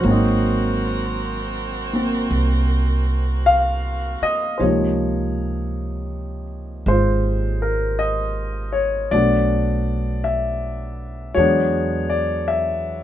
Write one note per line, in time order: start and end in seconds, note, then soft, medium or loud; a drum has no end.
0.00 2.27 G#1 medium
0.00 4.58 F#3 soft
0.00 1.92 A#3 soft
0.00 4.55 F#4 medium
0.00 3.43 C5 medium
0.07 4.57 C4 medium
0.07 1.94 C4 soft
0.07 4.57 A#4 medium
0.11 4.60 D#4 medium
1.93 4.59 A#3 soft
1.93 4.62 C4 soft
2.30 4.17 C2 medium
3.46 4.24 F5 medium
4.22 4.57 D#5 medium
4.22 muted upright bass stroke soft
4.58 6.82 C#2 medium
4.58 9.12 C3 soft
4.58 9.11 F3 soft
4.58 9.12 A#3 soft
4.58 9.12 D#4 soft
4.58 4.61 C5 medium
4.58 6.43 C#5 medium
6.86 9.08 G#1 medium
6.86 9.12 G#3 soft
6.86 9.13 F4 soft
6.86 7.64 C5 medium
7.62 7.97 A#4 medium
7.99 8.69 D#5 medium
8.72 9.13 C#5 medium
9.11 11.32 B1 medium
9.11 11.33 F#3 soft
9.11 11.36 A3 soft
9.11 11.36 B3 soft
9.11 11.37 D4 soft
9.11 10.27 D5 medium
10.24 11.39 E5 medium
11.35 13.03 E2 medium
11.35 13.03 F#3 medium
11.35 13.03 G#3 soft
11.35 13.03 B3 soft
11.35 12.11 C#5 medium
11.39 13.03 D4 medium
12.10 12.49 D5 medium
12.48 13.03 E5 medium